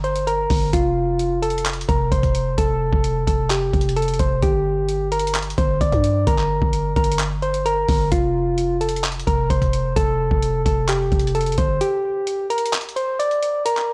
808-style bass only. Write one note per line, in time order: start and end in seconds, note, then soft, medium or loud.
0.00 0.47 G1 loud
0.50 0.72 G1 loud
0.73 1.85 F1 loud
1.89 2.11 F1 loud
2.12 2.56 F1 loud
2.58 2.91 F1 loud
2.93 3.26 F1 loud
3.27 3.72 F1 loud
3.73 4.18 F1 loud
4.19 4.42 F1 loud
4.43 5.54 G1 loud
5.58 5.80 G1 loud
5.81 5.92 G1 loud
5.92 6.26 G2 loud
6.27 6.60 G1 loud
6.62 6.95 G1 loud
6.96 7.85 G1 loud
7.89 8.11 G1 loud
8.12 9.23 F1 loud
9.27 9.49 F1 loud
9.50 9.95 F1 loud
9.96 10.30 F1 loud
10.31 10.64 F1 loud
10.66 11.10 F1 loud
11.12 11.56 F1 loud
11.58 11.80 G1 loud